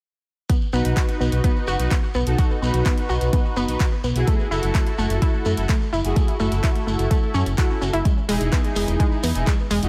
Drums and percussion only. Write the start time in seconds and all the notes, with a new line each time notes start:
0.50 kick, closed hi-hat, shekere
0.61 shekere
0.73 shekere
0.85 closed hi-hat, shekere
0.97 kick, clap, closed hi-hat, shekere
1.08 closed hi-hat, shekere
1.21 shekere
1.32 closed hi-hat, shekere
1.44 kick, closed hi-hat, shekere
1.56 shekere
1.67 shekere
1.80 closed hi-hat, shekere
1.91 kick, clap, closed hi-hat, shekere
2.03 shekere
2.14 shekere
2.26 closed hi-hat, shekere
2.38 kick, closed hi-hat, shekere
2.50 shekere
2.63 shekere
2.74 closed hi-hat, shekere
2.85 kick, clap, closed hi-hat, shekere
2.97 closed hi-hat, shekere
3.09 shekere
3.21 closed hi-hat, shekere
3.33 kick, closed hi-hat, shekere
3.45 shekere
3.56 shekere
3.68 closed hi-hat, shekere
3.80 kick, clap, closed hi-hat, shekere
3.92 shekere
4.04 shekere
4.16 closed hi-hat, shekere
4.27 kick, closed hi-hat, shekere
4.39 shekere
4.52 shekere
4.63 closed hi-hat, shekere
4.75 kick, clap, closed hi-hat, shekere
4.86 closed hi-hat, shekere
4.98 shekere
5.10 closed hi-hat, shekere
5.22 kick, closed hi-hat, shekere
5.34 shekere
5.45 shekere
5.57 closed hi-hat, shekere
5.69 kick, clap, closed hi-hat, shekere
5.81 shekere
5.93 shekere
6.05 closed hi-hat, shekere
6.16 kick, closed hi-hat, shekere
6.28 closed hi-hat, shekere
6.40 shekere
6.51 closed hi-hat, shekere
6.64 kick, clap, closed hi-hat, shekere
6.75 closed hi-hat, shekere
6.88 shekere
6.99 closed hi-hat, shekere
7.11 kick, closed hi-hat, shekere
7.23 shekere
7.34 shekere
7.46 closed hi-hat, shekere
7.58 kick, clap, closed hi-hat, shekere
7.70 shekere
7.82 shekere
7.93 closed hi-hat, shekere
8.05 kick, closed hi-hat, shekere
8.18 shekere
8.29 open hi-hat, shekere
8.40 closed hi-hat, shekere
8.53 kick, clap, closed hi-hat, shekere
8.63 closed hi-hat, shekere
8.75 open hi-hat, shekere
8.88 closed hi-hat, shekere
9.00 kick, closed hi-hat, shekere
9.12 shekere
9.23 open hi-hat, shekere
9.35 closed hi-hat, shekere
9.47 kick, clap, closed hi-hat, shekere
9.59 shekere
9.71 open hi-hat, shekere
9.83 closed hi-hat, shekere